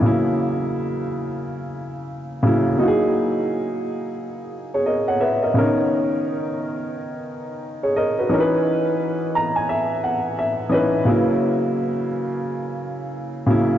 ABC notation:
X:1
M:4/4
L:1/16
Q:"Swing 16ths" 1/4=87
K:F#mix
V:1 name="Upright piano"
z16 | z8 z3 [Gc] [Ad] [cf] [Be] [Ad]- | [Ad] z12 [Gc] [Ad] [FB]- | [FB] z4 z a g e2 f2 e2 d2 |
z16 |]
V:2 name="Upright piano"
[C,F,A,E]6 z8 [C,F,A,E]2 | [F,A,DEFG]6 z8 z2 | [C,D,B,CA]6 z8 z2 | [E,CDAB]6 z8 [E,CDB]2 |
[C,F,A,E]6 z8 [C,F,A,E]2 |]